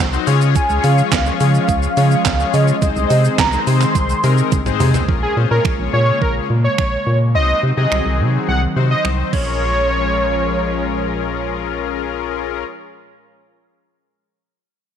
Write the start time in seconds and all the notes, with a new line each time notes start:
Already playing: F#5
0.00 C2, snare
0.13 F#3 C4 D#4 F#4 C5, shaker
0.27 C#3 G#3 C#4 F4 G#4 C#5, open hi-hat, shaker
0.41 shaker
0.55 F3 G#3 C#4 G#5, kick, closed hi-hat, shaker
0.70 C#2, shaker
0.84 C#3 F5, open hi-hat, shaker
0.98 shaker
1.12 C#2, kick, snare, clap, closed hi-hat, shaker
1.26 G#3 C#4 F4 G#4 C#5, shaker
1.40 C#3 G#3 C#4 F4 G#4 C#5 F5, open hi-hat, shaker
1.55 shaker
1.69 C#2, kick, closed hi-hat, shaker
1.83 shaker
1.97 C#3 G#3 C#4 F4 G#4 C#5, open hi-hat, shaker
2.11 shaker
2.25 C#2, kick, snare, clap, closed hi-hat, shaker
2.39 G#3 C#4 F4 G#4 C#5, shaker
2.54 C#3 D#5, open hi-hat, shaker
2.68 shaker
2.82 C2 D#3 G#3 C4 D#4 G#4 C5 D#5, kick, closed hi-hat, shaker
2.96 C2, shaker
3.10 C3, open hi-hat, shaker
3.25 shaker
3.38 C2 A#5, kick, snare, clap, closed hi-hat, shaker
3.53 G#3 C4 D#4 G#4 C5, shaker
3.67 C3 G#3 C4 D#4 G#4 C5 C6, open hi-hat, shaker
3.81 clap, shaker
3.95 C2, kick, closed hi-hat, shaker
4.10 shaker
4.23 C3 G#3 C4 D#4 G#4 A#4, open hi-hat, shaker
4.38 shaker
4.52 C2, kick, closed hi-hat, high tom, shaker
4.66 G#3 C4 D#4 G#4 C5, mid tom, shaker
4.80 C3, mid tom, open hi-hat, shaker
4.94 floor tom, shaker
5.08 A#1 C#3 G#3 A#3 C#4 F4 G#4 A#4, kick
5.23 G#4
5.37 A#2 C#4 F4 G#4 C5
5.51 A#2 C#4 F4 G#4 A#4 C#5
5.65 A#1, finger snap, kick
5.79 A#1
5.93 A#2 C#5
6.22 A#1 A#4, kick
6.50 A#2
6.64 C#5
6.78 A#1 C#5, finger snap, kick
7.07 A#2
7.35 C2 D#3 F#3 C4 D#4 F#4 C5 D#5
7.63 C3
7.77 C3 C4 D#4 F#4 G#4 D#5
7.92 C2, finger snap
8.06 C2
8.20 C3
8.48 C2 F#5
8.76 C3 C4 D#4 F#4 C5
8.91 D#5
9.05 C2, finger snap
9.33 A#1 A#2 F3 G#3 C#4 F4 G#4 A#4 C#5, kick, crash